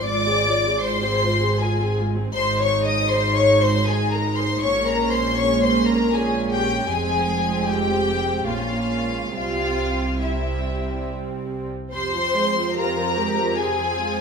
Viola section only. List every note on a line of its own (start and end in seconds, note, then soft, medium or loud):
0.07 0.24 G#3 medium
0.07 0.24 F4 medium
0.26 0.45 C4 medium
0.26 0.44 G#4 medium
0.46 0.64 G#3 medium
0.46 0.64 F4 medium
0.65 0.83 C4 medium
0.65 0.83 G#4 medium
0.84 1.01 G#3 medium
0.84 1.01 F4 medium
1.02 1.21 C4 medium
1.02 1.21 G#4 medium
1.22 1.41 G#3 medium
1.22 1.41 F4 medium
1.42 1.60 C4 medium
1.42 1.60 G#4 medium
1.61 1.78 G#3 medium
1.61 1.78 F4 medium
1.80 1.98 C4 medium
1.80 1.98 G#4 medium
1.98 2.17 G#3 medium
1.98 2.17 F4 medium
2.16 2.35 C4 medium
2.16 2.35 G#4 medium
2.35 3.07 G#3 medium
2.35 3.07 D#4 medium
3.11 3.86 G#3 medium
3.11 3.86 D#4 medium
3.88 4.62 G#3 medium
3.88 4.62 D#4 medium
4.63 5.37 G#3 medium
4.63 5.38 C#4 medium
5.39 6.14 G#3 medium
5.39 6.14 C#4 medium
6.16 6.89 G#3 medium
6.16 6.89 C#4 medium
6.92 8.45 G#3 medium
6.92 8.45 C4 medium
8.47 8.90 A#3 medium
8.47 9.34 C#4 medium
8.90 9.33 G#3 medium
9.33 10.21 G3 medium
9.33 10.20 C4 medium
10.23 11.69 G3 medium
10.23 11.69 C4 medium
11.93 12.12 C3 medium
11.93 14.21 C4 medium
12.12 12.34 F3 medium
12.34 12.55 G#3 medium
12.55 12.76 F3 medium
12.76 12.96 C3 medium
12.96 13.17 F3 medium
13.16 13.37 G#3 medium
13.37 13.57 F3 medium
13.57 13.77 C3 medium
13.77 13.97 F3 medium
13.97 14.18 G#3 medium
14.18 14.21 F3 medium